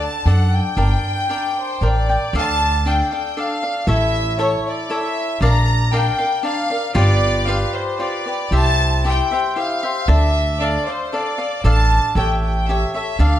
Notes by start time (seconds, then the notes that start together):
Already playing: D4 A4 D5 F#5
0.01 A5
0.26 F#2 D4 A4 D5 F#5
0.53 G5
0.77 G1 D4 A#4 D5 G5
1.29 D4 A#4 D5 G5
1.59 C5
1.81 A1 D4 A#4 D5 G5
2.09 A#4 D5 G5
2.33 D2 D4 A4 D5 F5
2.37 A5
2.85 D4 A4 D5 F5 G5
3.11 A4 D5 F5
3.37 D4 A4 D5 F5
3.63 A4 D5 F5
3.87 A1 E4 A4 C#5 E5
4.39 E4 A4 C#5 E5
4.68 D5
4.90 E4 A4 C#5 E5
5.41 A#1 D4 A#4 D5 F5 A#5
5.92 D4 A#4 D5 F5 G5
6.18 A#4 D5 F5
6.43 D4 A#4 D5 F5
6.70 A#4 D5 F5
6.95 G1 F4 G4 B4 D5
7.46 F4 G4 B4 D5 F5
7.74 C5
7.99 F4 G4 B4 D5
8.26 G4 B4 D5
8.51 C2 E4 G4 C5 E5 A5
9.05 E4 G4 C5 E5 G5
9.31 G4 C5 E5
9.56 E4 G4 C5 E5 F5
9.83 G4 C5 E5
10.08 D2 D4 A4 D5 E5
10.59 D4 A4 D5 F5
10.87 A4 C5 D5 F5
11.12 D4 A4 D5 F5
11.38 A4 D5 F5
11.64 A1 D4 A4 D5 F5 A5
12.15 A1 G4 A4 C#5 E5 G5
12.42 G5
12.67 G4 A4 C#5 E5
12.93 A4 C#5 E5
13.19 D2 D4 A4 D5 F5